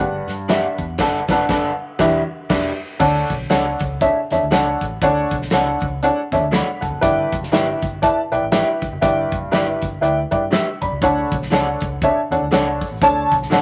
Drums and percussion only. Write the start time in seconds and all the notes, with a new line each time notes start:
0.28 snare, closed hi-hat
0.49 snare, closed hi-hat
0.78 kick, closed hi-hat
0.98 kick, snare, crash
1.29 kick, snare
1.49 kick, snare
1.99 kick, snare
2.50 kick, snare, crash
3.00 kick, crash
3.30 kick, closed hi-hat
3.50 snare, closed hi-hat
3.80 kick, closed hi-hat
4.01 kick, closed hi-hat
4.30 snare, closed hi-hat
4.51 snare, closed hi-hat
4.81 kick, closed hi-hat
5.02 kick, closed hi-hat
5.31 kick, closed hi-hat
5.42 snare
5.50 snare, closed hi-hat
5.81 kick, closed hi-hat
6.03 closed hi-hat
6.32 kick, snare, closed hi-hat
6.52 snare, closed hi-hat
6.82 kick, closed hi-hat
7.03 kick, closed hi-hat
7.32 kick, closed hi-hat
7.43 snare
7.52 snare, closed hi-hat
7.82 kick, closed hi-hat
8.03 kick, closed hi-hat
8.32 closed hi-hat
8.52 snare, closed hi-hat
8.82 kick, closed hi-hat
9.02 kick, closed hi-hat
9.32 kick, closed hi-hat
9.52 snare, closed hi-hat
9.81 kick, closed hi-hat
10.03 closed hi-hat
10.31 kick, closed hi-hat
10.52 snare, closed hi-hat
10.81 kick, closed hi-hat
11.02 kick, closed hi-hat
11.32 kick, closed hi-hat
11.42 snare
11.51 snare, closed hi-hat
11.80 kick, closed hi-hat
12.02 kick, closed hi-hat
12.32 closed hi-hat
12.52 snare, closed hi-hat
12.81 kick, open hi-hat
13.02 kick, closed hi-hat
13.32 kick, closed hi-hat
13.42 snare
13.51 snare, closed hi-hat